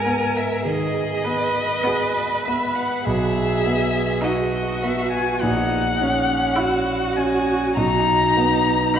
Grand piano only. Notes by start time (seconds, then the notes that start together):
Already playing: G#2 B3 G#4
0.06 B3
0.65 D#3
1.25 B3
1.87 G#4
2.48 B3
3.06 B1
3.66 B3
4.24 F#4
4.83 B3
5.43 A#1
6.01 C#4
6.58 F#4
7.18 C#4
7.76 B1
8.37 B3